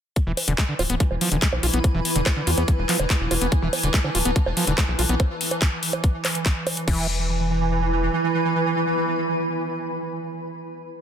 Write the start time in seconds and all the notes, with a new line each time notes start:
0.16 E3 E4, kick, closed hi-hat
0.27 E1 E3
0.37 open hi-hat, high bongo
0.47 E1 D3 B4, closed hi-hat
0.58 G#3, kick, clap, closed hi-hat
0.63 B5
0.69 D3
0.79 D1 F4, open hi-hat, high bongo
0.90 D1 B3, closed hi-hat
1.00 F3, kick, closed hi-hat
1.11 E1, high bongo
1.21 F3, open hi-hat
1.32 E1 D3, closed hi-hat
1.42 G#3, kick, clap, closed hi-hat
1.53 B1, high bongo
1.63 B1 F4, open hi-hat
1.74 B1 B3, closed hi-hat
1.84 kick, closed hi-hat, high bongo
1.95 E1 E3
2.05 open hi-hat
2.16 E1 D3, closed hi-hat
2.26 G#3, kick, clap, closed hi-hat, high bongo
2.37 D3
2.47 E2 F4, open hi-hat
2.58 E2 B3, closed hi-hat, high bongo
2.68 F3 A5, kick, closed hi-hat
2.79 E1
2.89 F3, clap, open hi-hat
3.00 E1 D3, closed hi-hat, high bongo
3.10 G#3, kick, clap, closed hi-hat
3.20 E1
3.31 E1 F4, open hi-hat, high bongo
3.41 E1 B3, closed hi-hat
3.52 kick, closed hi-hat
3.62 E1 E3
3.73 open hi-hat, high bongo
3.83 E1 D3, closed hi-hat
3.94 G#3, kick, clap, closed hi-hat
4.04 D3, high bongo
4.15 D1 F4, open hi-hat
4.25 D1 B3, closed hi-hat
4.36 F3, kick, closed hi-hat
4.46 E1, high bongo
4.57 F3, open hi-hat
4.67 E1 D3, closed hi-hat
4.78 G#3, kick, clap, closed hi-hat, high bongo
4.88 B1
4.99 B1 F4, open hi-hat
5.09 B1 B3, closed hi-hat
5.20 kick, closed hi-hat, high bongo
5.41 open hi-hat
5.51 closed hi-hat, high bongo
5.62 kick, clap, closed hi-hat
5.83 open hi-hat
5.93 closed hi-hat, high bongo
6.04 kick, closed hi-hat
6.25 clap, open hi-hat, high bongo
6.35 closed hi-hat
6.46 kick, clap, closed hi-hat
6.67 open hi-hat, high bongo
6.77 closed hi-hat
6.88 E1 E3 E4, kick, crash
6.94 B4
7.00 B5